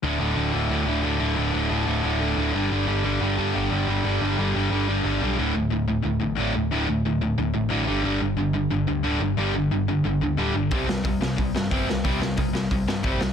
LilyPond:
<<
  \new Staff \with { instrumentName = "Distorted electric guitar" } { \clef bass \time 4/4 \key g \major \tempo 4 = 180 <d, a, d>8 <d, a, d>8 <d, a, d>8 <d, a, d>8 <d, a, d>8 <d, a, d>8 <d, a, d>8 <d, a, d>8 | <d, a, d>8 <d, a, d>8 <d, a, d>8 <d, a, d>8 <d, a, d>8 <d, a, d>8 <d, a, d>8 <g, d g>8 | <g, d g>8 <g, d g>8 <g, d g>8 <g, d g>8 <g, d g>8 <g, d g>8 <g, d g>8 <g, d g>8 | <g, d g>8 <g, d g>8 <g, d g>8 <g, d g>8 <g, d g>8 <g, d g>8 <g, d g>8 <g, d g>8 |
<d, a, d>8 <d, a,>8 <d, a,>8 <d, a,>8 <d, a,>8 <d, a,>8 <d, a, d>8 <d, a,>8 | <d, a, d>8 <d, a,>8 <d, a,>8 <d, a,>8 <d, a,>8 <d, a,>8 <d, a, d>8 <g, d g>8 | <g, d g>8 <g, d>8 <g, d>8 <g, d>8 <g, d>8 <g, d>8 <g, d g>8 <g, d>8 | <g, d g>8 <g, d>8 <g, d>8 <g, d>8 <g, d>8 <g, d>8 <g, d g>8 <g, d>8 |
<c g c'>8 <c g>8 <c g>8 <c g>8 <c g>8 <c g>8 <c g c'>8 <c g>8 | <c g c'>8 <c g>8 <c g>8 <c g>8 <c g>8 <c g>8 <c g c'>8 <c g>8 | }
  \new Staff \with { instrumentName = "Distorted electric guitar" } { \clef bass \time 4/4 \key g \major <d, a, d>8 <d, a, d>8 <d, a, d>8 <d, a, d>8 <d, a, d>8 <d, a, d>8 <d, a, d>8 <d, a, d>8 | <d, a, d>8 <d, a, d>8 <d, a, d>8 <d, a, d>8 <d, a, d>8 <d, a, d>8 <d, a, d>8 <g, d g>8 | <g, d g>8 <g, d g>8 <g, d g>8 <g, d g>8 <g, d g>8 <g, d g>8 <g, d g>8 <g, d g>8 | <g, d g>8 <g, d g>8 <g, d g>8 <g, d g>8 <g, d g>8 <g, d g>8 <g, d g>8 <g, d g>8 |
<d, a, d>8 <d, a,>8 <d, a,>8 <d, a,>8 <d, a,>8 <d, a,>8 <d, a, d>8 <d, a,>8 | <d, a, d>8 <d, a,>8 <d, a,>8 <d, a,>8 <d, a,>8 <d, a,>8 <d, a, d>8 <g, d g>8 | <g, d g>8 <g, d>8 <g, d>8 <g, d>8 <g, d>8 <g, d>8 <g, d g>8 <g, d>8 | <g, d g>8 <g, d>8 <g, d>8 <g, d>8 <g, d>8 <g, d>8 <g, d g>8 <g, d>8 |
<c g c'>8 <c g>8 <c g>8 <c g>8 <c g>8 <c g>8 <c g c'>8 <c g>8 | <c g c'>8 <c g>8 <c g>8 <c g>8 <c g>8 <c g>8 <c g c'>8 <c g>8 | }
  \new Staff \with { instrumentName = "Picked electric bass" } { \clef bass \time 4/4 \key g \major d,,8 d,,8 d,,8 d,,8 d,8 d,,8 d,,8 d,,8 | d,,8 d,,8 d,,8 d,,8 d,,4 d,,8 g,,8 | g,,8 g,,8 g,,8 g,,8 g,8 g,,8 g,,8 g,,8 | g,,8 g,,8 g,,8 g,,8 g,,4 g,,8 b,,8 |
d,,8 d,,8 d,,4 d,,8 a,,8 a,,8 d,,8 | d,,8 d,,8 d,,4 d,,8 a,,8 a,,8 g,,8 | g,,8 g,,8 g,,4 g,,8 d,8 d,,8 g,,8 | g,,8 g,,8 g,,4 g,,8 d,8 d,,8 g,,8 |
c,8 c,8 c,4 c,8 g,8 g,,8 c,8 | c,8 c,8 c,4 c,8 g,8 g,,8 c,8 | }
  \new DrumStaff \with { instrumentName = "Drums" } \drummode { \time 4/4 r4 r4 r4 r4 | r4 r4 r4 r4 | r4 r4 r4 r4 | r4 r4 r4 r4 |
r4 r4 r4 r4 | r4 r4 r4 r4 | r4 r4 r4 r4 | r4 r4 r4 r4 |
<hho bd>8 sn8 <hho bd>8 sn8 <hho bd>8 sn8 <hho bd>8 sn8 | <hho bd>8 sn8 <hho bd>8 sn8 <hho bd>8 sn8 <hho bd>8 sn8 | }
>>